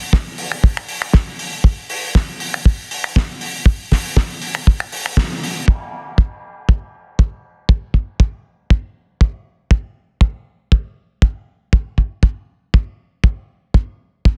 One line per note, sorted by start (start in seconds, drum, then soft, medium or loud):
0.13 kick loud
0.13 snare loud
0.38 open hi-hat loud
0.52 finger snap medium
0.64 kick loud
0.77 finger snap medium
0.88 open hi-hat loud
1.02 finger snap medium
1.02 open hi-hat medium
1.13 kick loud
1.13 snare loud
1.39 open hi-hat medium
1.64 kick loud
1.90 open hi-hat loud
2.15 kick loud
2.15 snare loud
2.40 open hi-hat loud
2.54 finger snap medium
2.65 kick loud
2.91 open hi-hat loud
3.04 finger snap medium
3.16 kick loud
3.16 snare loud
3.41 open hi-hat medium
3.66 kick loud
3.91 kick medium
3.91 snare medium
3.91 open hi-hat loud
4.17 kick loud
4.17 snare loud
4.42 open hi-hat loud
4.55 finger snap medium
4.67 kick loud
4.80 finger snap medium
4.92 open hi-hat loud
5.06 finger snap medium
5.06 open hi-hat medium
5.17 kick loud
5.17 snare loud
5.43 open hi-hat medium
5.68 kick loud
5.68 crash medium
6.18 kick loud
6.69 kick loud
7.19 kick loud
7.69 kick loud
7.94 kick medium
8.20 kick loud
8.70 kick loud
9.21 kick loud
9.71 kick loud
10.21 kick loud
10.72 kick loud
11.22 kick loud
11.73 kick loud
11.98 kick medium
12.23 kick loud
12.74 kick loud
13.24 kick loud
13.74 kick loud
14.25 kick loud